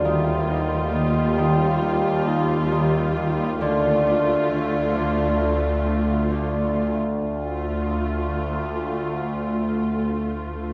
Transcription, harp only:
\new Staff \with { instrumentName = "Harp" } { \clef bass \time 4/4 \key d \phrygian \tempo 4 = 67 ees8 ees'8 ees8 ees8 ees8 ees'8 ees8 ees8 | d8 d'8 d8 d8 d8 d'8 d8 d8 | r1 | }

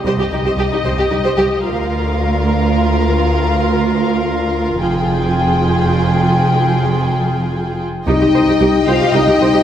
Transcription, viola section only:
\new Staff \with { instrumentName = "Viola section" } { \time 6/8 \key c \minor \tempo 4. = 75 g'16 g'16 g'16 g'16 g'16 g'16 g'16 g'16 g'16 g'16 g'16 r16 | f'2.~ | f'2. | f'2.~ |
f'2~ f'8 r8 | <ees' g'>16 g'16 <g' c''>16 g'16 <ees' g'>16 r16 <g' c''>16 g'16 <ees' g'>16 g'16 <g' c''>16 g'16 | }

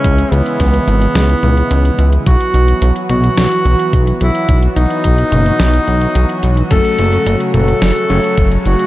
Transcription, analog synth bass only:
\new Staff \with { instrumentName = "Analog synth bass" } { \clef bass \time 4/4 \key b \mixolydian \tempo 4 = 108 cis,8 cis,8 cis,8 gis,,8 cis,8 cis,8 cis,8 cis,8 | b,,8 b,,8 b,,8 b,,8 b,,8 b,,8 b,,8 b,,8 | b,,8 b,,8 b,,8 fis,,8 b,,8 b,,8 b,,8 b,,8 | fis,,8 fis,,8 fis,,8 fis,,8 fis,,8 fis,,8 fis,,8 fis,,8 | }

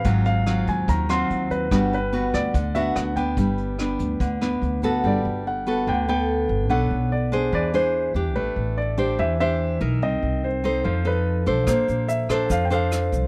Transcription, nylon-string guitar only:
\new Staff \with { instrumentName = "Nylon-string guitar" } { \time 4/4 \key g \major \tempo 4 = 145 << { <fis c' f'>4 <fis c' f'>4. <fis c' f'>4. | <b d' fis'>8 r8 <b d' fis'>4 r8 <b d' fis'>4 <b d'>8~ | <b d'>4 <b d'>4. <b d'>4 <b fis' a'>8~ | <b fis' a'>4 r8 <b fis' a'>4 <b a'>4. |
<d' a' cis''>4 r8 <d' aes' c''>4 <d' gis' c''>4 <d' g'>8~ | <d' g'>4. <d' g' c''>4 <d' g' c''>4 <ees' bes'>8~ | <ees' bes'>4. <ees' a' c''>4 <ees' a'>4 <d' a' c''>8~ | <d' a' c''>4. <d' a' c''>4 <d' a' c''>4. | } \\ { aes,2 ees2 | g2 d2 | g2 d2 | g2 d2 |
b2 e2 | a2 e2 | c'2 f2 | bes2 f2 | } >> }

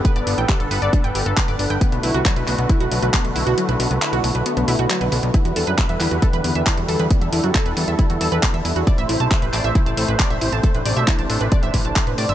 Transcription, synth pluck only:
\new Staff \with { instrumentName = "Synth pluck" } { \time 4/4 \key e \minor \tempo 4 = 136 b'16 d''16 d'16 g''16 g'16 a'16 b'16 d''16 d'16 g''16 g'16 a'16 b'16 d''16 d'16 g''16 | b16 b16 e'16 fis'16 fis16 b'16 b16 b16 e'16 fis'16 fis16 b'16 b16 b16 e'16 fis'16 | fis16 b'16 b16 b16 e'16 fis'16 fis16 b'16 b16 b16 e'16 fis'16 fis16 b'16 b16 b16 | e'16 fis'16 a'16 b'16 b16 e''16 e'16 fis'16 a'16 b'16 b16 e''16 e'16 fis'16 a'16 b'16 |
b16 e''16 e'16 fis'16 a'16 b'16 b16 e''16 e'16 fis'16 a'16 b'16 b16 e''16 e'16 fis'16 | d''16 e''16 e'16 a''16 a'16 b'16 d''16 e''16 e'16 a''16 a'16 b'16 d''16 e''16 e'16 a''16 | a'16 b'16 d''16 e''16 e'16 a''16 a'16 b'16 d''16 e''16 e'16 a''16 a'16 b'16 d''16 e''16 | }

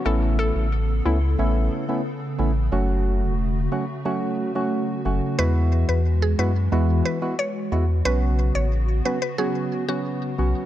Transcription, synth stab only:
\new Staff \with { instrumentName = "Synth stab" } { \time 4/4 \key e \major \tempo 4 = 90 <a b cis' e'>4 r8 <a b cis' e'>16 r16 <a b cis' e'>8. <a b cis' e'>16 r8 <a b cis' e'>16 r16 | <fis a cis' fis'>4 r8 <fis a cis' fis'>16 r16 <fis a cis' fis'>8. <fis a cis' fis'>8. <fis a cis' fis'>8 | <gis b e' fis'>4 r8 <gis b e' fis'>16 r16 <gis b e' fis'>8. <gis b e' fis'>16 r8 <gis b e' fis'>16 r16 | <fis b cis' fis'>4 r8 <fis b cis' fis'>16 r16 <fis b cis' fis'>8. <fis b cis' fis'>8. <fis b cis' fis'>8 | }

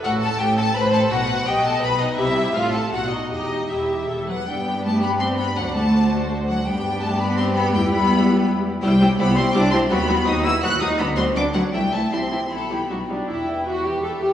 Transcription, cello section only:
\new Staff \with { instrumentName = "Cello section" } { \time 3/4 \key e \minor \tempo 4 = 165 a,4 a,4 a,4 | b,4 b,4 b,4 | c4 a,4 b,4 | e,4 e,4 e,8 fis8 |
\key g \major g4 a8 b8 c'8 b8 | fis8 a4. r8 fis8 | g4 a8 b8 c'8 b8 | g8 b4. r4 |
\key e \minor g4 b8 c'8 d'8 c'8 | b4 dis'8 e'8 fis'8 dis'8 | b8 c'8 d'8 fis8 g8 a8 | c'4 b4. r8 |
e,2. | }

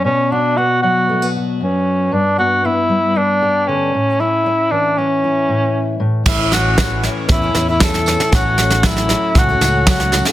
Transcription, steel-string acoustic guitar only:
\new Staff \with { instrumentName = "Steel-string acoustic guitar" } { \time 4/4 \key a \mixolydian \tempo 4 = 116 << { r8 fis'8 b4 a16 b16 fis'4. | r8 b8 b4 b8 g'4 r8 | cis'8 cis'4 cis'8 e'4. r8 | cis'8 cis'4 e'8 cis'8 cis'8 e'8 cis'16 e'16 |
cis'8 a4 cis'8 cis'8 r8 cis'8 cis'8 | } \\ { b,4. fis4. fis,4 | g,4. g4. d8 a,8~ | a,4 e4. a,4 a,8 | a,4 e4 a,4 e4 |
a,4 fis4 a,4 fis4 | } >> }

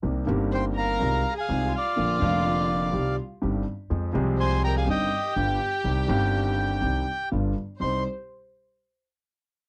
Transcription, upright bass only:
\new Staff \with { instrumentName = "Upright bass" } { \clef bass \time 4/4 \key c \minor \tempo 4 = 124 c,8 g,,4. c,8 r8 c,8 r8 | bes,,8 f,,4. c,8 r8 g,,8 r8 | f,8 c,4. g,,8 r8 g,,8 r8 | c,8 g,,4. c,8 r8 g,,8 r8 |
c,8 r2. r8 | }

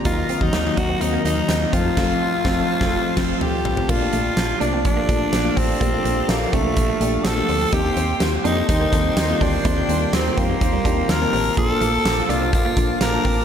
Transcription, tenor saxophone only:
\new Staff \with { instrumentName = "Tenor saxophone" } { \time 4/4 \key bes \major \tempo 4 = 125 f'8. ees'8. ges'8 ees'8 ees'4 f'8~ | f'2. g'4 | f'4. d'8 d'4. c'8~ | c'4 bes8 a4. a'4 |
g'4 r8 ees'8 ees'4. d'8~ | d'4 c'8 bes4. bes'4 | a'4. f'8 f'4 bes'4 | }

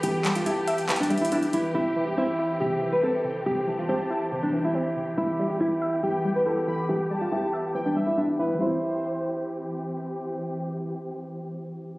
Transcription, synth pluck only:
\new Staff \with { instrumentName = "Synth pluck" } { \clef bass \time 4/4 \key c \major \tempo 4 = 140 <e g e'>8 g8 e'8 e''8 e8 g8 e'8 e8 | c8 e8 c'8 e'8 c8 e8 c'8 c8 | c8 e8 c'8 e'8 c8 e8 c'8 c8 | e8 g8 e'8 e''8 e8 g8 e'8 e8 |
e8 g8 e'8 e''8 e8 g8 e'8 e8 | <e g c' e'>1~ | <e g c' e'>1 | }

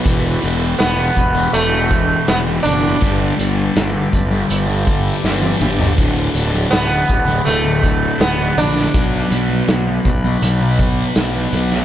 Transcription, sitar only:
\new Staff \with { instrumentName = "Sitar" } { \time 4/4 \key d \major \tempo 4 = 81 r4 b4 a4 b8 d'8~ | d'8 r2. r8 | r4 b4 a4 b8 d'8~ | d'8 r2. r8 | }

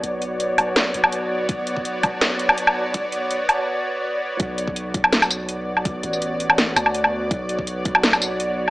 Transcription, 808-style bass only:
\new Staff \with { instrumentName = "808-style bass" } { \clef bass \time 4/4 \key b \minor \tempo 4 = 165 b,,4. b,,4 b,,4. | b,,2 b,,2 | b,,4. r2 r8 | b,,4. b,,2~ b,,8~ |
b,,8 a,,2 d,4. | b,,4. b,,2~ b,,8 | }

